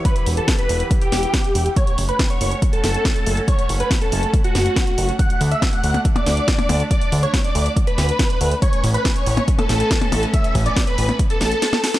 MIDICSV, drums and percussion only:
0, 0, Header, 1, 3, 480
1, 0, Start_track
1, 0, Tempo, 428571
1, 57, Time_signature, 4, 2, 24, 8
1, 13430, End_track
2, 0, Start_track
2, 0, Title_t, "Percussion blips"
2, 6656, Note_on_c, 9, 63, 60
2, 6768, Note_off_c, 9, 63, 0
2, 6896, Note_on_c, 9, 63, 81
2, 7008, Note_off_c, 9, 63, 0
2, 7376, Note_on_c, 9, 63, 63
2, 7488, Note_off_c, 9, 63, 0
2, 7496, Note_on_c, 9, 63, 81
2, 7608, Note_off_c, 9, 63, 0
2, 10497, Note_on_c, 9, 63, 60
2, 10609, Note_off_c, 9, 63, 0
2, 10736, Note_on_c, 9, 63, 77
2, 10848, Note_off_c, 9, 63, 0
2, 11217, Note_on_c, 9, 63, 63
2, 11329, Note_off_c, 9, 63, 0
2, 11337, Note_on_c, 9, 63, 81
2, 11449, Note_off_c, 9, 63, 0
2, 12418, Note_on_c, 9, 63, 60
2, 12530, Note_off_c, 9, 63, 0
2, 13137, Note_on_c, 9, 63, 60
2, 13249, Note_off_c, 9, 63, 0
2, 13430, End_track
3, 0, Start_track
3, 0, Title_t, "Drums"
3, 56, Note_on_c, 9, 36, 118
3, 56, Note_on_c, 9, 42, 89
3, 168, Note_off_c, 9, 36, 0
3, 168, Note_off_c, 9, 42, 0
3, 176, Note_on_c, 9, 42, 51
3, 288, Note_off_c, 9, 42, 0
3, 296, Note_on_c, 9, 46, 105
3, 408, Note_off_c, 9, 46, 0
3, 417, Note_on_c, 9, 42, 52
3, 529, Note_off_c, 9, 42, 0
3, 536, Note_on_c, 9, 36, 117
3, 536, Note_on_c, 9, 38, 124
3, 536, Note_on_c, 9, 42, 93
3, 648, Note_off_c, 9, 36, 0
3, 648, Note_off_c, 9, 38, 0
3, 648, Note_off_c, 9, 42, 0
3, 657, Note_on_c, 9, 42, 53
3, 769, Note_off_c, 9, 42, 0
3, 776, Note_on_c, 9, 46, 101
3, 888, Note_off_c, 9, 46, 0
3, 896, Note_on_c, 9, 42, 51
3, 1008, Note_off_c, 9, 42, 0
3, 1016, Note_on_c, 9, 36, 122
3, 1017, Note_on_c, 9, 42, 92
3, 1128, Note_off_c, 9, 36, 0
3, 1129, Note_off_c, 9, 42, 0
3, 1137, Note_on_c, 9, 42, 51
3, 1249, Note_off_c, 9, 42, 0
3, 1257, Note_on_c, 9, 38, 63
3, 1257, Note_on_c, 9, 46, 107
3, 1369, Note_off_c, 9, 38, 0
3, 1369, Note_off_c, 9, 46, 0
3, 1377, Note_on_c, 9, 42, 52
3, 1489, Note_off_c, 9, 42, 0
3, 1496, Note_on_c, 9, 36, 117
3, 1497, Note_on_c, 9, 38, 119
3, 1497, Note_on_c, 9, 42, 90
3, 1608, Note_off_c, 9, 36, 0
3, 1609, Note_off_c, 9, 38, 0
3, 1609, Note_off_c, 9, 42, 0
3, 1617, Note_on_c, 9, 42, 53
3, 1729, Note_off_c, 9, 42, 0
3, 1737, Note_on_c, 9, 46, 105
3, 1849, Note_off_c, 9, 46, 0
3, 1857, Note_on_c, 9, 42, 52
3, 1969, Note_off_c, 9, 42, 0
3, 1977, Note_on_c, 9, 36, 121
3, 1977, Note_on_c, 9, 42, 89
3, 2089, Note_off_c, 9, 36, 0
3, 2089, Note_off_c, 9, 42, 0
3, 2097, Note_on_c, 9, 42, 49
3, 2209, Note_off_c, 9, 42, 0
3, 2217, Note_on_c, 9, 46, 111
3, 2329, Note_off_c, 9, 46, 0
3, 2337, Note_on_c, 9, 42, 50
3, 2449, Note_off_c, 9, 42, 0
3, 2457, Note_on_c, 9, 36, 122
3, 2457, Note_on_c, 9, 38, 119
3, 2457, Note_on_c, 9, 42, 87
3, 2569, Note_off_c, 9, 36, 0
3, 2569, Note_off_c, 9, 38, 0
3, 2569, Note_off_c, 9, 42, 0
3, 2577, Note_on_c, 9, 42, 51
3, 2689, Note_off_c, 9, 42, 0
3, 2698, Note_on_c, 9, 46, 104
3, 2810, Note_off_c, 9, 46, 0
3, 2817, Note_on_c, 9, 42, 50
3, 2929, Note_off_c, 9, 42, 0
3, 2936, Note_on_c, 9, 36, 121
3, 2937, Note_on_c, 9, 42, 91
3, 3048, Note_off_c, 9, 36, 0
3, 3049, Note_off_c, 9, 42, 0
3, 3057, Note_on_c, 9, 42, 50
3, 3169, Note_off_c, 9, 42, 0
3, 3177, Note_on_c, 9, 38, 61
3, 3177, Note_on_c, 9, 46, 109
3, 3289, Note_off_c, 9, 38, 0
3, 3289, Note_off_c, 9, 46, 0
3, 3298, Note_on_c, 9, 42, 50
3, 3410, Note_off_c, 9, 42, 0
3, 3416, Note_on_c, 9, 36, 118
3, 3417, Note_on_c, 9, 38, 119
3, 3417, Note_on_c, 9, 42, 86
3, 3528, Note_off_c, 9, 36, 0
3, 3529, Note_off_c, 9, 38, 0
3, 3529, Note_off_c, 9, 42, 0
3, 3537, Note_on_c, 9, 42, 50
3, 3649, Note_off_c, 9, 42, 0
3, 3657, Note_on_c, 9, 46, 108
3, 3769, Note_off_c, 9, 46, 0
3, 3777, Note_on_c, 9, 42, 49
3, 3889, Note_off_c, 9, 42, 0
3, 3896, Note_on_c, 9, 36, 118
3, 3897, Note_on_c, 9, 42, 87
3, 4008, Note_off_c, 9, 36, 0
3, 4009, Note_off_c, 9, 42, 0
3, 4017, Note_on_c, 9, 42, 50
3, 4129, Note_off_c, 9, 42, 0
3, 4136, Note_on_c, 9, 46, 104
3, 4248, Note_off_c, 9, 46, 0
3, 4257, Note_on_c, 9, 42, 50
3, 4369, Note_off_c, 9, 42, 0
3, 4375, Note_on_c, 9, 36, 119
3, 4377, Note_on_c, 9, 38, 115
3, 4377, Note_on_c, 9, 42, 88
3, 4487, Note_off_c, 9, 36, 0
3, 4489, Note_off_c, 9, 38, 0
3, 4489, Note_off_c, 9, 42, 0
3, 4496, Note_on_c, 9, 42, 50
3, 4608, Note_off_c, 9, 42, 0
3, 4617, Note_on_c, 9, 46, 107
3, 4729, Note_off_c, 9, 46, 0
3, 4737, Note_on_c, 9, 42, 49
3, 4849, Note_off_c, 9, 42, 0
3, 4855, Note_on_c, 9, 36, 123
3, 4857, Note_on_c, 9, 42, 86
3, 4967, Note_off_c, 9, 36, 0
3, 4969, Note_off_c, 9, 42, 0
3, 4977, Note_on_c, 9, 42, 48
3, 5089, Note_off_c, 9, 42, 0
3, 5096, Note_on_c, 9, 38, 60
3, 5096, Note_on_c, 9, 46, 106
3, 5208, Note_off_c, 9, 38, 0
3, 5208, Note_off_c, 9, 46, 0
3, 5216, Note_on_c, 9, 42, 49
3, 5328, Note_off_c, 9, 42, 0
3, 5335, Note_on_c, 9, 36, 119
3, 5336, Note_on_c, 9, 38, 112
3, 5336, Note_on_c, 9, 42, 85
3, 5447, Note_off_c, 9, 36, 0
3, 5448, Note_off_c, 9, 38, 0
3, 5448, Note_off_c, 9, 42, 0
3, 5457, Note_on_c, 9, 42, 50
3, 5569, Note_off_c, 9, 42, 0
3, 5576, Note_on_c, 9, 46, 106
3, 5688, Note_off_c, 9, 46, 0
3, 5697, Note_on_c, 9, 42, 49
3, 5809, Note_off_c, 9, 42, 0
3, 5815, Note_on_c, 9, 36, 116
3, 5816, Note_on_c, 9, 42, 90
3, 5927, Note_off_c, 9, 36, 0
3, 5928, Note_off_c, 9, 42, 0
3, 5937, Note_on_c, 9, 42, 49
3, 6049, Note_off_c, 9, 42, 0
3, 6057, Note_on_c, 9, 46, 101
3, 6169, Note_off_c, 9, 46, 0
3, 6177, Note_on_c, 9, 42, 51
3, 6289, Note_off_c, 9, 42, 0
3, 6296, Note_on_c, 9, 36, 118
3, 6297, Note_on_c, 9, 38, 113
3, 6297, Note_on_c, 9, 42, 89
3, 6408, Note_off_c, 9, 36, 0
3, 6409, Note_off_c, 9, 38, 0
3, 6409, Note_off_c, 9, 42, 0
3, 6416, Note_on_c, 9, 42, 51
3, 6528, Note_off_c, 9, 42, 0
3, 6536, Note_on_c, 9, 46, 97
3, 6648, Note_off_c, 9, 46, 0
3, 6656, Note_on_c, 9, 42, 50
3, 6768, Note_off_c, 9, 42, 0
3, 6776, Note_on_c, 9, 36, 116
3, 6776, Note_on_c, 9, 42, 88
3, 6888, Note_off_c, 9, 36, 0
3, 6888, Note_off_c, 9, 42, 0
3, 6896, Note_on_c, 9, 42, 48
3, 7008, Note_off_c, 9, 42, 0
3, 7016, Note_on_c, 9, 38, 58
3, 7016, Note_on_c, 9, 46, 107
3, 7128, Note_off_c, 9, 38, 0
3, 7128, Note_off_c, 9, 46, 0
3, 7136, Note_on_c, 9, 42, 50
3, 7248, Note_off_c, 9, 42, 0
3, 7256, Note_on_c, 9, 36, 114
3, 7256, Note_on_c, 9, 38, 106
3, 7256, Note_on_c, 9, 42, 83
3, 7368, Note_off_c, 9, 36, 0
3, 7368, Note_off_c, 9, 38, 0
3, 7368, Note_off_c, 9, 42, 0
3, 7376, Note_on_c, 9, 42, 50
3, 7488, Note_off_c, 9, 42, 0
3, 7496, Note_on_c, 9, 46, 105
3, 7608, Note_off_c, 9, 46, 0
3, 7617, Note_on_c, 9, 42, 50
3, 7729, Note_off_c, 9, 42, 0
3, 7736, Note_on_c, 9, 36, 109
3, 7737, Note_on_c, 9, 42, 91
3, 7848, Note_off_c, 9, 36, 0
3, 7849, Note_off_c, 9, 42, 0
3, 7857, Note_on_c, 9, 42, 51
3, 7969, Note_off_c, 9, 42, 0
3, 7977, Note_on_c, 9, 46, 98
3, 8089, Note_off_c, 9, 46, 0
3, 8097, Note_on_c, 9, 42, 51
3, 8209, Note_off_c, 9, 42, 0
3, 8216, Note_on_c, 9, 36, 112
3, 8218, Note_on_c, 9, 38, 113
3, 8218, Note_on_c, 9, 42, 91
3, 8328, Note_off_c, 9, 36, 0
3, 8330, Note_off_c, 9, 38, 0
3, 8330, Note_off_c, 9, 42, 0
3, 8338, Note_on_c, 9, 42, 52
3, 8450, Note_off_c, 9, 42, 0
3, 8458, Note_on_c, 9, 46, 99
3, 8570, Note_off_c, 9, 46, 0
3, 8578, Note_on_c, 9, 42, 51
3, 8690, Note_off_c, 9, 42, 0
3, 8696, Note_on_c, 9, 36, 112
3, 8698, Note_on_c, 9, 42, 90
3, 8808, Note_off_c, 9, 36, 0
3, 8810, Note_off_c, 9, 42, 0
3, 8818, Note_on_c, 9, 42, 49
3, 8930, Note_off_c, 9, 42, 0
3, 8938, Note_on_c, 9, 38, 57
3, 8938, Note_on_c, 9, 46, 104
3, 9050, Note_off_c, 9, 38, 0
3, 9050, Note_off_c, 9, 46, 0
3, 9057, Note_on_c, 9, 42, 53
3, 9169, Note_off_c, 9, 42, 0
3, 9176, Note_on_c, 9, 36, 110
3, 9177, Note_on_c, 9, 38, 108
3, 9177, Note_on_c, 9, 42, 88
3, 9288, Note_off_c, 9, 36, 0
3, 9289, Note_off_c, 9, 38, 0
3, 9289, Note_off_c, 9, 42, 0
3, 9297, Note_on_c, 9, 42, 52
3, 9409, Note_off_c, 9, 42, 0
3, 9417, Note_on_c, 9, 46, 99
3, 9529, Note_off_c, 9, 46, 0
3, 9537, Note_on_c, 9, 42, 52
3, 9649, Note_off_c, 9, 42, 0
3, 9656, Note_on_c, 9, 36, 110
3, 9656, Note_on_c, 9, 42, 92
3, 9768, Note_off_c, 9, 36, 0
3, 9768, Note_off_c, 9, 42, 0
3, 9777, Note_on_c, 9, 42, 54
3, 9889, Note_off_c, 9, 42, 0
3, 9897, Note_on_c, 9, 46, 98
3, 10009, Note_off_c, 9, 46, 0
3, 10017, Note_on_c, 9, 42, 53
3, 10129, Note_off_c, 9, 42, 0
3, 10136, Note_on_c, 9, 36, 110
3, 10137, Note_on_c, 9, 38, 116
3, 10137, Note_on_c, 9, 42, 97
3, 10248, Note_off_c, 9, 36, 0
3, 10249, Note_off_c, 9, 38, 0
3, 10249, Note_off_c, 9, 42, 0
3, 10257, Note_on_c, 9, 42, 53
3, 10369, Note_off_c, 9, 42, 0
3, 10376, Note_on_c, 9, 46, 95
3, 10488, Note_off_c, 9, 46, 0
3, 10497, Note_on_c, 9, 42, 53
3, 10609, Note_off_c, 9, 42, 0
3, 10616, Note_on_c, 9, 36, 114
3, 10617, Note_on_c, 9, 42, 94
3, 10728, Note_off_c, 9, 36, 0
3, 10729, Note_off_c, 9, 42, 0
3, 10736, Note_on_c, 9, 42, 54
3, 10848, Note_off_c, 9, 42, 0
3, 10856, Note_on_c, 9, 38, 58
3, 10856, Note_on_c, 9, 46, 103
3, 10968, Note_off_c, 9, 38, 0
3, 10968, Note_off_c, 9, 46, 0
3, 10977, Note_on_c, 9, 42, 53
3, 11089, Note_off_c, 9, 42, 0
3, 11096, Note_on_c, 9, 36, 110
3, 11097, Note_on_c, 9, 38, 113
3, 11097, Note_on_c, 9, 42, 93
3, 11208, Note_off_c, 9, 36, 0
3, 11209, Note_off_c, 9, 38, 0
3, 11209, Note_off_c, 9, 42, 0
3, 11217, Note_on_c, 9, 42, 55
3, 11329, Note_off_c, 9, 42, 0
3, 11337, Note_on_c, 9, 46, 98
3, 11449, Note_off_c, 9, 46, 0
3, 11457, Note_on_c, 9, 42, 53
3, 11569, Note_off_c, 9, 42, 0
3, 11576, Note_on_c, 9, 36, 113
3, 11576, Note_on_c, 9, 42, 98
3, 11688, Note_off_c, 9, 36, 0
3, 11688, Note_off_c, 9, 42, 0
3, 11697, Note_on_c, 9, 42, 56
3, 11809, Note_off_c, 9, 42, 0
3, 11816, Note_on_c, 9, 36, 57
3, 11817, Note_on_c, 9, 46, 101
3, 11928, Note_off_c, 9, 36, 0
3, 11929, Note_off_c, 9, 46, 0
3, 11937, Note_on_c, 9, 42, 55
3, 12049, Note_off_c, 9, 42, 0
3, 12056, Note_on_c, 9, 36, 115
3, 12057, Note_on_c, 9, 38, 121
3, 12057, Note_on_c, 9, 42, 96
3, 12168, Note_off_c, 9, 36, 0
3, 12169, Note_off_c, 9, 38, 0
3, 12169, Note_off_c, 9, 42, 0
3, 12177, Note_on_c, 9, 42, 54
3, 12289, Note_off_c, 9, 42, 0
3, 12298, Note_on_c, 9, 46, 99
3, 12410, Note_off_c, 9, 46, 0
3, 12418, Note_on_c, 9, 42, 54
3, 12530, Note_off_c, 9, 42, 0
3, 12536, Note_on_c, 9, 36, 113
3, 12537, Note_on_c, 9, 42, 99
3, 12648, Note_off_c, 9, 36, 0
3, 12649, Note_off_c, 9, 42, 0
3, 12657, Note_on_c, 9, 42, 54
3, 12769, Note_off_c, 9, 42, 0
3, 12777, Note_on_c, 9, 38, 62
3, 12777, Note_on_c, 9, 46, 103
3, 12889, Note_off_c, 9, 38, 0
3, 12889, Note_off_c, 9, 46, 0
3, 12897, Note_on_c, 9, 42, 55
3, 13009, Note_off_c, 9, 42, 0
3, 13017, Note_on_c, 9, 38, 75
3, 13017, Note_on_c, 9, 42, 94
3, 13129, Note_off_c, 9, 38, 0
3, 13129, Note_off_c, 9, 42, 0
3, 13137, Note_on_c, 9, 38, 73
3, 13137, Note_on_c, 9, 42, 55
3, 13249, Note_off_c, 9, 38, 0
3, 13249, Note_off_c, 9, 42, 0
3, 13257, Note_on_c, 9, 38, 94
3, 13257, Note_on_c, 9, 46, 101
3, 13369, Note_off_c, 9, 38, 0
3, 13369, Note_off_c, 9, 46, 0
3, 13377, Note_on_c, 9, 38, 85
3, 13377, Note_on_c, 9, 42, 56
3, 13430, Note_off_c, 9, 38, 0
3, 13430, Note_off_c, 9, 42, 0
3, 13430, End_track
0, 0, End_of_file